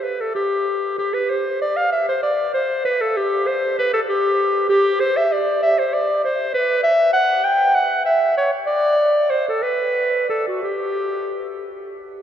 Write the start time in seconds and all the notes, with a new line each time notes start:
0.04 B4
0.21 A4
0.35 G4
0.98 G4
1.14 B4
1.30 C5
1.62 D5
1.77 F5
1.92 E5
2.09 C5
2.23 D5
2.54 C5
2.85 B4
3.01 A4
3.17 G4
3.47 C5
3.79 B4
3.94 A4
4.09 G4
4.69 G4
5.00 C5
5.17 E5
5.32 D5
5.63 E5
5.79 C5
5.94 D5
6.25 C5
6.54 B4
6.83 E5
7.13 F#5
7.44 G5
7.75 F#5
8.05 E5
8.37 C#5
8.67 D5
9.30 C5
9.49 A4
9.63 B4
10.30 A4
10.48 F#4
10.63 G4